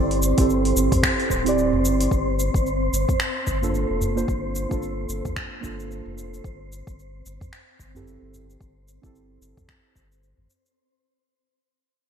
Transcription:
Already playing: sub bass G1, synth keys C4 E4 G4 D5, synth texture C4 C5
0.11 open hi-hat
0.22 shaker
0.37 sub bass G1, synth keys C4 E4 G4 A4, kick, open hi-hat, shaker
0.50 shaker
0.65 open hi-hat
0.76 sub bass G1, shaker
0.92 kick, open hi-hat, udu, shaker
1.03 finger snap, kick, shaker
1.20 open hi-hat
1.30 sub bass D1, kick, shaker
1.44 synth keys C4 E4 G4, open hi-hat, shaker
1.49 synth keys D5
1.58 shaker
1.73 sub bass G1, udu
1.85 shaker
2.00 open hi-hat, shaker
2.11 sub bass G1, kick, shaker
2.39 shaker
2.54 sub bass G1, kick, shaker
2.67 shaker
2.92 sub bass G1, shaker
3.08 kick, udu, shaker
3.20 finger snap, shaker
3.47 sub bass G1, kick, shaker
3.62 synth keys A#3 D4 F4 A4, udu, shaker
3.75 shaker
3.90 sub bass F1
4.01 udu, shaker
4.16 synth keys A#3 D4 F4 C5, shaker
4.28 sub bass G1, kick, shaker
4.55 shaker
4.69 sub bass G1, synth keys A#3 D4 F4, kick, shaker
4.73 synth keys A4
4.83 shaker
5.09 sub bass G1, shaker
5.25 kick, udu, shaker
5.36 finger snap, kick, shaker
5.61 sub bass G1, synth keys A#3 D4 F4, kick, shaker
5.65 synth keys A4
5.80 shaker
5.91 shaker
6.06 sub bass F1, udu
6.18 shaker
6.34 shaker
6.44 sub bass G1, kick, shaker
6.72 shaker
6.87 sub bass G1, kick, shaker
6.99 shaker
7.26 sub bass G1, shaker
7.40 kick, udu, shaker
7.53 finger snap, shaker
7.79 sub bass G1, kick, shaker
7.95 synth keys C4 E4 G4 A4, udu, shaker
8.07 shaker
8.22 sub bass G1
8.34 udu, shaker
8.50 shaker
8.61 sub bass G1, kick, shaker
8.88 shaker
9.02 sub bass G1, synth keys C4 E4 G4, kick, shaker
9.06 synth keys A4
9.15 shaker
9.41 sub bass G1, shaker
9.57 kick, udu, shaker
9.69 finger snap, kick, shaker
9.95 sub bass G1, kick, shaker
10.12 shaker
10.23 shaker
10.37 sub bass G1, udu
10.50 shaker
10.66 shaker

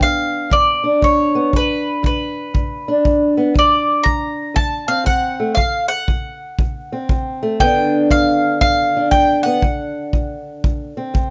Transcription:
Already playing: steel-string acoustic guitar B3 D4
0.00 steel-string acoustic guitar G2, mandolin F5, kick
0.50 steel-string acoustic guitar G2, mandolin D5, kick
0.84 steel-string acoustic guitar D4
1.02 steel-string acoustic guitar G2, mandolin C#5, kick
1.35 steel-string acoustic guitar B3
1.53 steel-string acoustic guitar G2, mandolin B4, kick
2.03 steel-string acoustic guitar G2, mandolin B4, kick
2.54 steel-string acoustic guitar G2, kick
2.88 steel-string acoustic guitar D4
3.05 steel-string acoustic guitar G2, kick
3.37 steel-string acoustic guitar B3
3.54 steel-string acoustic guitar D2, kick
3.59 mandolin D5
4.03 steel-string acoustic guitar D2, mandolin A#5, kick
4.54 steel-string acoustic guitar D2, mandolin A5, kick
4.88 steel-string acoustic guitar C4, mandolin F5
5.04 steel-string acoustic guitar D2, mandolin F#5, kick
5.40 steel-string acoustic guitar A3
5.55 steel-string acoustic guitar D2, mandolin F5, kick
5.88 mandolin F#5
6.08 steel-string acoustic guitar D2, kick
6.59 steel-string acoustic guitar D2, kick
6.92 steel-string acoustic guitar C4
7.09 steel-string acoustic guitar D2, kick
7.43 steel-string acoustic guitar A3
7.60 steel-string acoustic guitar G2 D3 B3 D4, mandolin G5, kick
8.11 steel-string acoustic guitar G2, mandolin F5, kick
8.61 steel-string acoustic guitar G2, mandolin F5, kick
8.97 steel-string acoustic guitar D4
9.11 steel-string acoustic guitar G2, mandolin G5, kick
9.43 steel-string acoustic guitar B3, mandolin F#5
9.62 steel-string acoustic guitar D2, kick
10.13 steel-string acoustic guitar D2, kick
10.64 steel-string acoustic guitar D2, kick
10.97 steel-string acoustic guitar C4
11.14 steel-string acoustic guitar D2, kick

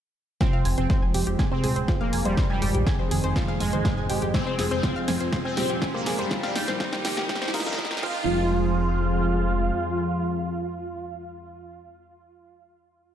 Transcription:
0.41 synth drone F2, digital synth lead C3, analog synth pad F3 G#3 C4 G#4, analog polysynth C4, synth arpeggio sound F4, kick, snare, closed hi-hat, riser
0.53 synth arpeggio sound F5
0.65 analog synth bass F1, synth arpeggio sound G#5, open hi-hat
0.78 analog synth bass F1, digital synth lead C3, analog polysynth C4, synth arpeggio sound C5, closed hi-hat
0.90 synth arpeggio sound C5, kick, snare, closed hi-hat
1.02 analog synth bass F1, synth arpeggio sound G#5
1.14 analog synth bass F1, synth stab G#2 F3 C4, synth arpeggio sound G4, open hi-hat
1.27 analog synth bass F1, synth arpeggio sound G4, closed hi-hat
1.39 synth stab G#2 F3 C4, synth arpeggio sound G#5, kick, snare, closed hi-hat
1.51 digital synth lead C3, analog polysynth C4, synth arpeggio sound C5
1.64 analog synth bass D#1, synth arpeggio sound G#4, open hi-hat
1.76 analog synth bass D#1, synth arpeggio sound C5, closed hi-hat
1.88 synth arpeggio sound F4, kick, snare, closed hi-hat
2.01 analog synth bass F1, digital synth lead A#2, analog polysynth A#3, synth arpeggio sound F5
2.13 analog synth bass F1, synth arpeggio sound G#5, open hi-hat
2.25 analog synth bass F1, digital synth lead G2, analog polysynth G3, synth arpeggio sound C5, closed hi-hat
2.37 analog synth pad D#3 G#3 C4, synth arpeggio sound C5, kick, snare, closed hi-hat
2.50 digital synth lead G2, analog polysynth G3, synth arpeggio sound G#5
2.62 analog synth bass F1, synth arpeggio sound G4, open hi-hat
2.75 analog synth bass A#1, synth arpeggio sound G4, closed hi-hat
2.87 synth arpeggio sound G#5, kick, snare, closed hi-hat
2.99 analog synth bass F1, synth arpeggio sound C5
3.11 analog synth bass F1, synth stab G#2 D#3 C4, synth arpeggio sound G#4, open hi-hat
3.24 analog synth bass F1, synth arpeggio sound C5, closed hi-hat
3.36 synth arpeggio sound F4, kick, snare, closed hi-hat
3.48 synth arpeggio sound F5
3.60 analog synth bass F1, digital synth lead G#2, analog polysynth G#3, synth arpeggio sound G#5, open hi-hat
3.73 analog synth bass F1, synth stab G#2 D#3 C4, synth arpeggio sound C5, closed hi-hat
3.85 synth arpeggio sound C5, kick, snare, closed hi-hat
3.97 analog synth bass F1, synth arpeggio sound G#5
4.10 analog synth bass F1, synth arpeggio sound G4, open hi-hat
4.22 analog synth bass F1, synth arpeggio sound G4, closed hi-hat
4.34 digital synth lead C3, analog synth pad F3, analog polysynth C4, synth arpeggio sound G#5, kick, snare, closed hi-hat
4.47 synth arpeggio sound C5
4.59 analog synth bass F1, synth arpeggio sound G#4, snare, open hi-hat
4.71 analog synth bass F1, digital synth lead C3, analog polysynth C4, synth arpeggio sound C5, closed hi-hat
4.83 synth arpeggio sound F4, kick, snare, closed hi-hat
4.96 analog synth bass F1, synth arpeggio sound F5
5.08 analog synth bass F1, synth stab G#2 F3 C4, synth arpeggio sound G#5, snare, open hi-hat
5.20 analog synth bass F1, synth arpeggio sound C5, closed hi-hat
5.33 synth arpeggio sound C5, kick, snare, closed hi-hat
5.45 digital synth lead C3, analog polysynth C4, synth arpeggio sound G#5
5.57 analog synth bass D#1, synth arpeggio sound G4, snare, open hi-hat
5.70 analog synth bass D#1, synth arpeggio sound G4, closed hi-hat
5.82 synth arpeggio sound G#5, kick, snare, closed hi-hat
5.94 analog synth bass F1, digital synth lead A#2, analog polysynth A#3, synth arpeggio sound C5
6.06 analog synth bass F1, synth arpeggio sound G#4, snare, open hi-hat
6.19 analog synth bass F1, digital synth lead G2, analog polysynth G3, synth arpeggio sound C5, closed hi-hat
6.31 analog synth pad D#3 G3 A#3 G4, synth arpeggio sound F4, kick, snare, closed hi-hat
6.43 digital synth lead G2, analog polysynth G3, synth arpeggio sound F5, snare
6.55 analog synth bass F1, synth arpeggio sound G5, snare, open hi-hat
6.68 analog synth bass A#1, synth arpeggio sound C5, snare
6.80 synth arpeggio sound C5, kick, snare, closed hi-hat
6.93 analog synth bass F1, synth arpeggio sound G5, snare
7.05 analog synth bass F1, synth arpeggio sound G4, snare, open hi-hat
7.17 analog synth bass F1, synth arpeggio sound G4, snare
7.29 synth arpeggio sound G5, kick, snare, closed hi-hat
7.35 snare
7.42 synth arpeggio sound C5, snare
7.48 snare
7.54 analog synth bass F1, synth stab G2 D#3 A#3, digital synth lead D#3, analog polysynth D#4, synth arpeggio sound F4, snare, open hi-hat
7.60 snare
7.66 analog synth bass F1, synth stab G2 D#3 A#3, synth arpeggio sound F4, snare, closed hi-hat
7.72 snare
7.78 synth arpeggio sound F4, kick, snare, closed hi-hat
7.85 snare
7.91 analog synth bass F1, synth arpeggio sound G5, snare
7.97 snare
8.03 analog synth bass F1, synth drone F2, synth stab G#2 F3 C4, digital synth lead F3, analog synth pad F3 G#3 C4 G#4, analog polysynth F4, synth arpeggio sound F4, kick, crash

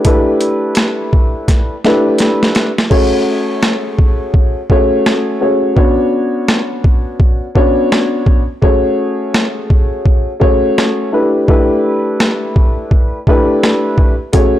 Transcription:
0.04 grand piano A3 D4 E4 G4 B4, kick, closed hi-hat
0.41 closed hi-hat
0.75 cross-stick, snare, closed hi-hat
1.13 kick
1.48 kick, snare, closed hi-hat
1.84 grand piano A3 D4 E4 G4 B4, snare
2.18 snare, closed hi-hat
2.43 snare
2.55 snare, closed hi-hat
2.78 snare
2.90 grand piano A3 C#4 F#4 G#4 C#5, kick, crash
3.63 cross-stick, snare
3.99 kick
4.34 kick
4.70 grand piano A3 C#4 F#4 G#4 C#5, kick
5.06 cross-stick, snare
5.40 grand piano A3 C#4 F#4 G#4 C#5
5.76 grand piano B3 C#4 D4 F#4 C#5, kick
6.48 cross-stick, snare
6.84 kick
7.20 kick
7.55 grand piano B3 C#4 D4 F#4 C#5, kick
7.92 cross-stick, snare
8.26 kick
8.61 grand piano A3 C#4 F#4 G#4 C#5, kick
9.34 cross-stick, snare
9.70 kick
10.06 kick
10.40 grand piano A3 C#4 F#4 G#4 C#5, kick
10.78 cross-stick, snare
11.12 grand piano A3 D4 E4 G4 B4
11.48 grand piano A3 D4 E4 G4 B4, kick
12.20 cross-stick, snare
12.56 kick
12.91 kick
13.27 grand piano A3 D4 E4 G4 B4, kick
13.63 cross-stick, snare
13.98 kick
14.33 grand piano A3 C#4 F#4 G#4 C#5, kick, closed hi-hat

